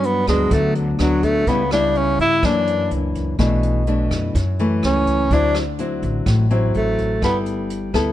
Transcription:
0.00 0.23 G2 medium
0.00 0.49 G2 medium
0.00 0.24 F#3 medium
0.00 0.24 B3 medium
0.00 0.24 D4 medium
0.00 closed hi-hat soft
0.06 0.28 B3 medium
0.27 0.50 D2 medium
0.27 0.96 F#3 medium
0.27 0.55 G#3 medium
0.27 0.96 B3 medium
0.27 0.96 D4 medium
0.27 kick soft
0.27 cross-stick medium
0.27 closed hi-hat soft
0.51 0.96 D2 loud
0.51 1.45 D3 medium
0.51 0.75 A3 medium
0.51 kick medium
0.51 closed hi-hat medium
0.75 0.92 D3 soft
0.75 closed hi-hat soft
0.99 1.44 D2 medium
0.99 1.46 F#3 medium
0.99 1.25 F#3 medium
0.99 1.46 B3 medium
0.99 1.46 D4 medium
0.99 cross-stick medium
0.99 closed hi-hat soft
1.23 1.50 A3 medium
1.23 kick soft
1.23 closed hi-hat soft
1.47 2.15 C#2 medium
1.47 2.41 C#3 medium
1.47 1.62 G3 medium
1.47 1.72 B3 medium
1.47 1.62 B3 medium
1.47 1.62 E4 medium
1.47 kick medium
1.47 closed hi-hat medium
1.71 2.40 G3 medium
1.71 2.40 B3 medium
1.71 1.98 D4 medium
1.71 2.40 E4 medium
1.71 cross-stick medium
1.71 closed hi-hat soft
1.95 2.20 C#4 medium
1.95 closed hi-hat soft
2.19 2.41 G2 medium
2.19 2.47 E4 medium
2.19 kick soft
2.19 closed hi-hat soft
2.43 2.87 F#2 loud
2.43 3.37 F#2 medium
2.43 3.36 E3 soft
2.43 3.36 A#3 medium
2.43 3.36 D4 medium
2.43 2.92 D4 medium
2.43 kick medium
2.43 cross-stick medium
2.43 closed hi-hat medium
2.67 closed hi-hat soft
2.91 3.35 C#2 medium
2.91 closed hi-hat soft
3.15 kick soft
3.15 closed hi-hat soft
3.39 4.07 B1 medium
3.39 4.32 B2 medium
3.39 3.83 E3 medium
3.39 3.83 A3 medium
3.39 3.83 D4 medium
3.39 kick medium
3.39 cross-stick medium
3.39 closed hi-hat medium
3.63 closed hi-hat soft
3.87 4.35 E3 medium
3.87 4.35 A3 soft
3.87 4.35 D4 medium
3.87 closed hi-hat soft
4.11 4.33 F#2 medium
4.11 kick soft
4.11 cross-stick medium
4.11 closed hi-hat soft
4.35 5.28 F#2 medium
4.35 4.80 F#2 loud
4.35 kick medium
4.35 closed hi-hat medium
4.59 5.27 E3 medium
4.59 5.28 A3 medium
4.59 closed hi-hat soft
4.83 5.28 C#2 medium
4.83 5.34 C#4 medium
4.83 cross-stick medium
4.83 closed hi-hat soft
5.07 kick soft
5.07 closed hi-hat soft
5.31 5.99 D2 loud
5.31 6.25 D3 medium
5.31 5.62 F#3 medium
5.31 5.62 C4 medium
5.31 5.56 D4 medium
5.31 5.62 E4 medium
5.31 kick medium
5.31 closed hi-hat medium
5.55 cross-stick medium
5.55 closed hi-hat soft
5.79 6.47 F#3 medium
5.79 6.47 C4 medium
5.79 6.47 E4 medium
5.79 closed hi-hat soft
6.02 6.25 A1 medium
6.02 kick soft
6.02 closed hi-hat soft
6.26 6.71 A1 loud
6.26 7.20 A2 medium
6.26 kick medium
6.26 cross-stick medium
6.26 closed hi-hat medium
6.50 7.19 F#3 medium
6.50 7.19 C4 medium
6.50 7.19 E4 medium
6.50 closed hi-hat soft
6.74 7.19 A1 medium
6.74 7.20 A3 medium
6.74 closed hi-hat soft
6.98 kick soft
6.98 closed hi-hat soft
7.22 7.90 G1 medium
7.22 8.12 G3 medium
7.22 7.91 B3 medium
7.22 7.38 B3 medium
7.22 7.91 E4 medium
7.22 7.91 A4 medium
7.22 kick medium
7.22 cross-stick medium
7.22 closed hi-hat medium
7.46 closed hi-hat soft
7.70 closed hi-hat soft
7.94 8.12 D2 loud
7.94 8.12 B3 medium
7.94 8.12 E4 medium
7.94 8.12 A4 medium
7.94 kick soft
7.94 cross-stick medium
7.94 closed hi-hat soft

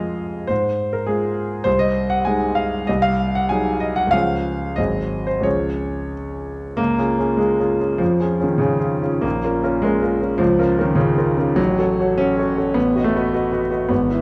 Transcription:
0.00 0.52 F2 medium
0.00 0.46 G#3 soft
0.00 0.46 F4 soft
0.00 0.46 G#4 soft
0.00 0.49 D#5 medium
0.00 0.53 F5 medium
0.47 1.07 G#2 medium
0.47 0.93 C5 medium
0.93 1.08 A#4 medium
1.07 1.63 G#3 soft
1.07 1.63 F4 soft
1.07 1.66 G#4 medium
1.64 2.24 C2 medium
1.64 1.80 C5 medium
1.79 2.10 D#5 medium
2.10 2.25 F#5 medium
2.25 2.84 G#3 soft
2.25 2.85 D#4 soft
2.25 2.85 G#4 medium
2.25 2.56 G#5 medium
2.55 2.87 F5 medium
2.87 3.49 C2 medium
2.87 3.03 D#5 medium
3.02 3.34 F5 medium
3.35 3.50 F#5 medium
3.49 4.09 F#3 soft
3.49 4.09 D#4 soft
3.49 4.09 G#4 medium
3.49 3.80 G#5 medium
3.80 3.96 D#5 medium
3.96 4.12 F#5 medium
4.07 4.73 C#2 medium
4.07 4.77 F5 medium
4.12 4.74 F3 soft
4.12 4.74 C#4 soft
4.12 4.75 G#4 soft
4.76 5.43 G#1 medium
4.76 5.41 F#3 soft
4.76 5.41 C4 soft
4.76 5.41 G#4 soft
4.76 5.27 D#5 medium
5.27 5.44 C5 medium
5.41 6.72 C#2 medium
5.41 6.73 F3 soft
5.41 6.74 C#4 soft
5.41 6.74 G#4 soft
5.41 6.12 C#5 medium
6.77 6.98 C#2 medium
6.77 7.38 A#3 medium
6.98 7.16 C#4 soft
6.98 7.17 F4 soft
6.98 7.17 G#4 soft
7.19 7.37 C#4 soft
7.19 7.37 F4 soft
7.19 7.38 G#4 soft
7.37 7.99 G#3 medium
7.37 7.57 C#4 soft
7.37 7.58 F4 soft
7.37 7.58 G#4 soft
7.59 7.78 C#4 soft
7.59 7.78 F4 soft
7.59 7.79 G#4 soft
7.79 7.98 C#4 soft
7.79 7.98 F4 soft
7.79 7.99 G#4 soft
7.98 8.20 F2 medium
7.98 8.44 F3 medium
8.20 8.38 C#4 soft
8.20 8.38 F4 soft
8.20 8.39 G#4 soft
8.40 8.60 D#3 medium
8.40 8.58 C#4 medium
8.40 8.58 F4 soft
8.40 8.59 G#4 soft
8.58 9.23 C#3 medium
8.58 8.78 C#4 soft
8.58 8.79 F4 soft
8.58 8.79 G#4 medium
8.79 9.00 C#4 soft
8.79 9.00 F4 soft
8.79 9.01 G#4 soft
9.02 9.22 C#4 soft
9.02 9.22 F4 soft
9.02 9.22 G#4 soft
9.21 9.44 A#1 medium
9.21 9.83 A#3 medium
9.44 9.62 C#4 soft
9.44 9.62 F4 soft
9.44 9.62 A#4 medium
9.63 9.82 C#4 soft
9.63 9.82 F4 medium
9.63 9.82 A#4 medium
9.82 10.40 G#3 medium
9.82 10.01 C#4 soft
9.82 10.01 F4 soft
9.82 10.01 A#4 medium
10.02 10.19 C#4 soft
10.02 10.20 F4 medium
10.02 10.20 A#4 medium
10.20 10.38 C#4 soft
10.20 10.39 F4 soft
10.20 10.39 A#4 soft
10.38 10.59 C#2 medium
10.38 10.82 F3 loud
10.58 10.76 C#4 medium
10.58 10.77 F4 medium
10.58 10.77 A#4 medium
10.78 10.97 D#3 medium
10.78 10.95 C#4 medium
10.78 10.96 F4 medium
10.78 10.96 A#4 medium
10.95 11.57 C#3 medium
10.95 11.15 C#4 soft
10.95 11.15 F4 soft
10.95 11.16 A#4 soft
11.18 11.36 C#4 medium
11.18 11.36 F4 medium
11.18 11.36 A#4 medium
11.37 11.56 C#4 soft
11.37 11.56 F4 soft
11.37 11.57 A#4 medium
11.56 11.78 A1 medium
11.56 12.18 F#3 loud
11.79 11.97 F#4 soft
11.79 11.97 A4 medium
11.79 11.98 C#5 medium
12.00 12.18 F#4 soft
12.00 12.18 A4 soft
12.00 12.18 C#5 medium
12.18 12.76 C#4 loud
12.18 12.37 F#4 medium
12.18 12.37 A4 soft
12.18 12.37 C#5 medium
12.38 12.56 F#4 soft
12.38 12.56 A4 soft
12.38 12.56 C#5 medium
12.58 12.75 F#4 soft
12.58 12.75 A4 soft
12.58 12.75 C#5 soft
12.74 12.95 A1 medium
12.74 13.04 B3 medium
12.96 13.13 F#4 medium
12.96 13.13 B4 soft
12.96 13.13 D#5 medium
13.04 13.61 A3 medium
13.16 13.32 F#4 soft
13.16 13.33 B4 medium
13.16 13.33 D#5 medium
13.34 13.51 F#4 medium
13.34 13.51 B4 medium
13.34 13.51 D#5 medium
13.52 13.69 F#4 soft
13.52 13.69 B4 soft
13.52 13.70 D#5 medium
13.71 13.89 F#4 soft
13.71 13.89 B4 soft
13.71 13.89 D#5 soft
13.89 14.10 G#1 medium
13.89 14.21 B3 medium
14.11 14.21 E4 soft
14.11 14.21 B4 soft
14.11 14.21 E5 soft

